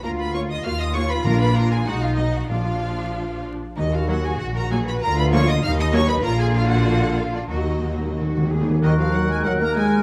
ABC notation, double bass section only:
X:1
M:2/4
L:1/8
Q:1/4=96
K:Ebm
V:1 name="Double bass section" clef=bass
=D,,2 E,,2 | B,,,2 C,,2 | B,,,3 z | E,,2 B,,,2 |
=D,,2 E,,2 | B,,,4 | E,,3 z | E,,2 E,,2 |]